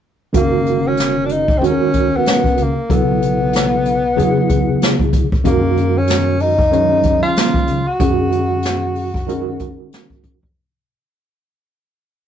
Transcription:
0.33 1.58 F#1 medium
0.33 1.42 D#3 medium
0.33 1.42 G#3 medium
0.33 0.89 A#3 medium
0.33 1.43 C#4 medium
0.33 1.43 F#4 medium
0.33 1.43 A#4 medium
0.33 kick loud
0.33 closed hi-hat medium
0.66 closed hi-hat medium
0.88 1.27 C#4 medium
0.97 snare loud
0.97 closed hi-hat medium
1.25 1.34 D4 medium
1.25 closed hi-hat medium
1.32 1.60 D#4 medium
1.48 kick medium
1.58 2.17 D#2 medium
1.58 2.70 D#3 medium
1.58 2.70 G#3 medium
1.58 1.67 C4 medium
1.58 2.71 C#4 medium
1.63 2.18 C#4 loud
1.63 2.71 F#4 medium
1.63 1.70 G#4 medium
1.63 closed hi-hat medium
1.69 2.74 A#4 medium
1.93 kick medium
1.93 closed hi-hat medium
2.16 2.64 B3 medium
2.26 snare loud
2.26 closed hi-hat medium
2.44 kick medium
2.57 2.74 C#2 medium
2.57 closed hi-hat medium
2.62 2.96 A#3 medium
2.89 4.13 B1 medium
2.89 3.98 C#3 medium
2.89 3.98 F#3 medium
2.89 3.98 B3 medium
2.89 3.99 E4 medium
2.89 3.99 A4 medium
2.89 kick medium
2.89 closed hi-hat medium
2.95 5.15 B3 medium
3.22 closed hi-hat medium
3.53 snare loud
3.53 closed hi-hat medium
3.85 closed hi-hat medium
4.16 4.73 E2 loud
4.16 5.25 C#3 medium
4.16 5.25 F#3 medium
4.16 5.26 B3 medium
4.16 5.26 E4 medium
4.16 5.26 G#4 loud
4.16 closed hi-hat medium
4.49 kick medium
4.49 closed hi-hat medium
4.82 snare loud
4.82 closed hi-hat medium
4.99 kick medium
5.13 5.29 D2 medium
5.13 kick medium
5.13 closed hi-hat medium
5.32 kick medium
5.44 7.19 F#2 loud
5.44 6.53 D#3 medium
5.44 6.53 G#3 medium
5.44 5.99 A#3 medium
5.44 6.53 C#4 medium
5.44 6.54 F#4 medium
5.44 6.54 A#4 medium
5.44 kick loud
5.44 closed hi-hat loud
5.77 closed hi-hat medium
5.98 6.43 C#4 medium
6.07 snare loud
6.07 closed hi-hat medium
6.40 7.22 D#4 medium
6.40 open hi-hat medium
6.59 kick medium
6.71 7.80 D#3 medium
6.71 7.81 F#3 medium
6.71 7.81 G#3 medium
6.71 7.81 C#4 medium
6.71 7.81 C#5 medium
6.71 closed hi-hat medium
7.03 kick medium
7.03 closed hi-hat medium
7.23 7.89 F4 medium
7.36 snare loud
7.36 closed hi-hat medium
7.54 kick medium
7.67 7.85 C#2 medium
7.67 closed hi-hat medium
7.87 9.92 F#4 medium
7.99 9.74 F#2 medium
7.99 9.08 D#3 medium
7.99 9.08 G#3 medium
7.99 9.09 C#4 medium
7.99 9.09 F#4 medium
7.99 9.09 G#4 medium
7.99 kick loud
7.99 closed hi-hat medium
8.32 closed hi-hat medium
8.62 snare loud
8.62 closed hi-hat medium
8.95 open hi-hat medium
9.14 kick medium
9.27 10.36 D#3 medium
9.27 10.36 G#3 medium
9.27 10.36 C#4 medium
9.27 10.37 F#4 medium
9.27 10.37 A#4 medium
9.27 closed hi-hat medium
9.59 kick medium
9.59 closed hi-hat medium
9.92 snare loud
9.92 closed hi-hat medium
10.10 10.22 G#2 medium
10.10 kick medium
10.24 10.52 F2 medium
10.24 kick medium
10.24 closed hi-hat medium
10.43 kick medium

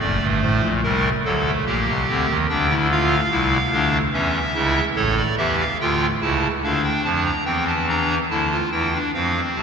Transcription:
0.00 0.18 F#1 medium
0.00 0.18 F#2 medium
0.00 0.72 A3 medium
0.00 0.26 D5 medium
0.21 0.39 G1 medium
0.21 0.39 G2 medium
0.42 0.60 A1 medium
0.42 0.60 A2 medium
0.42 0.68 C5 medium
0.62 0.80 A#1 medium
0.62 0.80 A#2 medium
0.83 1.09 C2 medium
0.83 1.09 C3 medium
0.83 1.09 G3 medium
0.83 1.09 A#4 medium
1.25 1.51 D2 medium
1.25 1.51 D3 medium
1.25 1.43 F#3 medium
1.25 1.51 A4 medium
1.46 1.64 A3 medium
1.66 1.85 A#1 medium
1.66 1.84 A#2 medium
1.66 1.92 A#3 medium
1.66 2.37 G4 medium
1.87 2.05 C2 medium
1.87 2.05 C3 medium
2.08 2.26 D2 medium
2.08 2.26 D3 medium
2.08 2.33 C4 medium
2.29 2.46 D#2 medium
2.29 2.47 D#3 medium
2.49 3.20 D2 medium
2.49 3.20 D3 medium
2.49 2.67 D4 medium
2.49 2.75 G5 medium
2.70 2.88 E4 medium
2.91 3.16 F4 loud
2.91 3.97 F5 medium
3.31 3.57 C2 medium
3.31 3.57 C3 medium
3.31 3.57 E4 loud
3.73 3.98 D2 medium
3.73 3.98 D3 medium
3.73 3.98 D4 medium
4.13 4.39 E2 medium
4.13 4.39 E3 medium
4.13 4.39 C#4 medium
4.13 4.85 E5 medium
4.55 4.81 C#2 medium
4.55 4.81 C#3 medium
4.55 4.81 E4 medium
4.96 5.22 A1 medium
4.96 5.22 A2 medium
4.96 5.22 A4 medium
4.96 5.14 C#5 medium
5.17 5.35 D5 medium
5.38 5.64 E2 medium
5.38 5.64 E3 medium
5.38 5.64 G4 loud
5.38 5.56 E5 medium
5.60 5.77 F5 medium
5.81 6.06 D2 medium
5.81 6.06 D3 medium
5.81 6.06 F4 medium
5.81 6.06 G5 medium
6.21 6.47 C#2 medium
6.21 6.47 C#3 medium
6.21 6.47 E4 medium
6.21 6.47 A5 medium
6.63 6.89 D2 medium
6.63 6.89 D3 medium
6.63 7.35 D4 medium
6.63 6.81 F5 medium
6.84 7.02 G5 medium
7.04 7.30 F2 medium
7.04 7.31 F3 medium
7.04 7.23 A5 medium
7.25 7.44 A#5 medium
7.45 8.19 E2 medium
7.45 8.18 E3 medium
7.45 7.72 C4 medium
7.45 7.64 G5 medium
7.67 7.86 A5 medium
7.89 8.15 D4 medium
7.89 8.15 A#5 medium
8.30 8.57 D2 medium
8.30 8.56 D3 medium
8.30 8.49 E4 medium
8.30 8.56 A5 medium
8.51 8.69 F4 medium
8.72 8.98 E2 medium
8.72 8.98 E3 medium
8.72 8.90 E4 medium
8.72 8.98 G5 medium
8.93 9.11 D4 medium
9.14 9.40 F2 soft
9.14 9.40 F3 medium
9.14 9.63 C4 soft
9.14 9.40 F5 medium
9.56 9.63 C2 medium
9.56 9.63 C3 medium
9.56 9.63 A5 medium

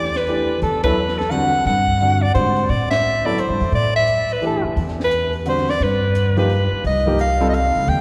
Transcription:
0.00 0.59 E2 medium
0.00 0.11 E3 soft
0.00 0.11 A3 soft
0.00 0.11 D4 soft
0.00 0.11 G4 medium
0.00 0.18 D5 medium
0.05 snare soft
0.15 0.62 B4 medium
0.15 snare soft
0.15 open hi-hat soft
0.27 0.48 E3 soft
0.27 0.47 A3 soft
0.27 0.48 D4 soft
0.27 0.48 G4 medium
0.27 open hi-hat soft
0.62 1.62 E2 medium
0.62 0.83 A4 medium
0.62 open hi-hat soft
0.83 0.96 F#3 medium
0.83 0.96 B3 medium
0.83 0.96 E4 medium
0.83 0.96 A4 medium
0.83 1.20 B4 medium
0.83 kick medium
0.83 ride medium
1.08 snare soft
1.18 1.32 A4 medium
1.18 snare soft
1.18 open hi-hat soft
1.31 1.51 D3 medium
1.31 1.51 G3 medium
1.31 1.51 C4 medium
1.31 1.51 F#4 medium
1.31 1.66 F#5 loud
1.31 closed hi-hat soft
1.53 open hi-hat soft
1.65 2.31 G2 medium
1.65 2.23 F#5 medium
1.65 open hi-hat soft
1.88 kick medium
2.00 2.20 D3 soft
2.00 2.21 G3 soft
2.00 2.21 C4 soft
2.00 2.21 F#4 medium
2.00 open hi-hat soft
2.22 2.34 D5 medium
2.34 2.67 G#2 medium
2.34 2.69 D3 soft
2.34 2.69 G3 soft
2.34 2.70 C4 soft
2.34 2.70 F#4 soft
2.34 2.71 C5 medium
2.34 closed hi-hat soft
2.56 open hi-hat soft
2.69 3.46 A2 medium
2.69 2.90 D5 medium
2.69 open hi-hat soft
2.90 3.27 E5 medium
2.90 snare medium
2.90 ride medium
3.25 3.37 F#3 medium
3.25 3.37 B3 medium
3.25 3.37 E4 medium
3.25 3.38 A4 medium
3.25 3.41 D5 medium
3.38 3.74 C5 medium
3.38 closed hi-hat soft
3.50 3.60 G2 medium
3.60 3.71 E2 medium
3.60 open hi-hat soft
3.72 4.60 A2 medium
3.72 3.94 D5 medium
3.72 open hi-hat soft
3.96 4.34 E5 medium
4.07 closed hi-hat soft
4.29 4.44 B4 medium
4.29 open hi-hat soft
4.42 4.62 E3 medium
4.42 4.62 A3 soft
4.42 4.62 D4 soft
4.42 4.62 G4 medium
4.42 open hi-hat soft
4.46 4.65 A4 medium
4.64 muted upright bass stroke soft
4.76 5.76 E2 medium
4.76 open hi-hat soft
4.88 snare soft
5.00 snare soft
5.04 5.34 B4 medium
5.11 closed hi-hat soft
5.33 open hi-hat soft
5.45 5.65 D3 medium
5.45 5.66 G3 soft
5.45 5.66 C4 soft
5.45 5.66 F#4 medium
5.45 5.71 C5 medium
5.45 closed hi-hat soft
5.58 snare soft
5.68 5.84 D5 medium
5.68 snare soft
5.68 open hi-hat soft
5.80 6.67 G2 medium
5.80 6.38 B4 medium
5.80 open hi-hat soft
6.15 closed hi-hat medium
6.37 6.48 F3 medium
6.37 6.48 A#3 medium
6.37 6.49 D#4 medium
6.37 6.49 G4 medium
6.37 6.82 B4 medium
6.37 open hi-hat soft
6.50 open hi-hat soft
6.72 muted upright bass stroke soft
6.84 7.71 C2 medium
6.84 7.18 D#5 medium
6.84 open hi-hat soft
7.06 7.18 F3 medium
7.06 7.18 A#3 medium
7.06 7.18 D#4 medium
7.06 7.18 G4 medium
7.19 7.47 F5 medium
7.19 closed hi-hat soft
7.40 7.52 G3 medium
7.40 7.52 C4 medium
7.40 7.52 F4 medium
7.40 7.52 A4 medium
7.40 open hi-hat soft
7.49 7.55 D#5 medium
7.54 7.90 F5 medium
7.54 closed hi-hat soft
7.75 7.87 C#2 medium
7.75 open hi-hat soft
7.87 8.01 D#2 medium
7.87 8.01 G5 medium
7.87 open hi-hat soft

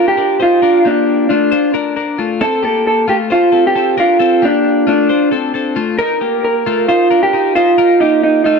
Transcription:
0.00 0.17 D4 soft
0.00 0.16 A#4 medium
0.08 0.42 G4 medium
0.17 0.40 D4 soft
0.17 0.39 A#4 medium
0.40 0.63 D#4 medium
0.40 0.87 F4 medium
0.40 0.62 C5 medium
0.62 0.85 D4 medium
0.62 0.85 A#4 medium
0.85 1.27 A#3 medium
0.85 1.28 D4 medium
0.85 1.27 G4 medium
1.29 1.52 A3 medium
1.29 1.71 D4 medium
1.29 1.51 F4 medium
1.52 1.74 F4 medium
1.52 1.74 C5 medium
1.74 1.96 D4 medium
1.74 1.95 A#4 medium
1.96 2.19 D4 medium
1.96 2.19 A#4 medium
2.18 2.41 A3 medium
2.18 2.41 F4 medium
2.41 2.64 C4 medium
2.41 2.63 A4 loud
2.63 3.05 A#3 medium
2.63 3.05 G4 medium
2.63 2.86 A4 medium
2.87 3.09 A4 medium
3.08 3.31 A3 medium
3.08 3.30 F4 medium
3.08 3.15 G4 medium
3.30 3.53 F4 medium
3.30 3.66 F4 medium
3.30 3.52 C5 medium
3.52 3.75 C4 medium
3.52 3.74 A4 medium
3.67 3.99 G4 loud
3.75 3.98 C4 medium
3.75 3.97 A4 medium
3.98 4.20 D4 medium
3.98 4.45 F4 medium
3.98 4.19 A#4 medium
4.19 4.42 C4 medium
4.19 4.42 A4 medium
4.42 4.85 A#3 medium
4.42 4.87 D4 medium
4.42 4.84 G4 medium
4.87 5.10 A3 medium
4.87 5.29 D4 medium
4.87 5.09 F4 medium
5.09 5.32 F4 medium
5.09 5.31 C5 medium
5.31 5.54 C4 medium
5.31 5.53 A4 medium
5.54 5.77 C4 soft
5.54 5.76 A4 medium
5.76 5.99 A3 medium
5.76 5.98 F4 medium
5.98 6.21 D#4 medium
5.98 6.21 A#4 loud
5.98 6.43 A#4 loud
6.21 6.63 A#3 soft
6.21 6.63 G4 medium
6.45 6.88 A#4 medium
6.66 6.89 A3 medium
6.66 6.88 F4 medium
6.88 7.11 D#4 medium
6.88 7.22 F4 medium
6.88 7.10 C5 medium
7.11 7.33 D4 medium
7.11 7.32 A#4 medium
7.23 7.55 G4 medium
7.33 7.55 D#4 medium
7.33 7.55 A#4 medium
7.55 7.78 D#4 medium
7.55 8.01 F4 medium
7.55 7.78 C5 medium
7.78 8.01 D#4 medium
7.78 8.00 A#4 medium
8.00 8.43 A#3 medium
8.00 8.22 D#4 medium
8.00 8.42 G4 medium
8.23 8.43 D#4 medium
8.44 8.60 A3 medium
8.44 8.60 D#4 medium
8.44 8.60 F4 medium

